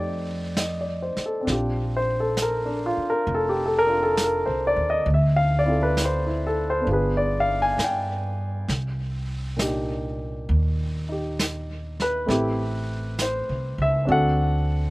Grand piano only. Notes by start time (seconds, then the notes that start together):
Already playing: A3 C4 D#4 G4 D5
0.57 D#5
0.81 D5
1.02 C5
1.26 A4
1.41 C4 D4
1.49 F4 G4
1.97 C5
2.20 A4
2.42 A#4
2.65 D4
2.86 F4
3.10 A#4
3.35 A4
3.49 G4
3.66 A4
3.79 A#4
3.86 D4 F4
4.03 A4
4.24 A#4
4.46 C5
4.67 D5
4.90 D#5
5.14 E5
5.36 F5
5.59 D5
5.64 C4 E4 F4
5.69 A4
5.83 B4
6.05 C5
6.26 E4
6.47 A4
6.70 C5
6.80 B3 D4
6.87 F4 G#4
6.93 B4
7.17 D5
7.40 F5
7.62 G#5
7.84 G5
9.56 A#2 D4 D#4
9.61 G4
11.09 D#4 G4
12.02 B4
12.26 A3 C4 E4
12.31 G4
13.22 C5
13.82 E5
14.05 C4 D4 F#4
14.10 A4 F#5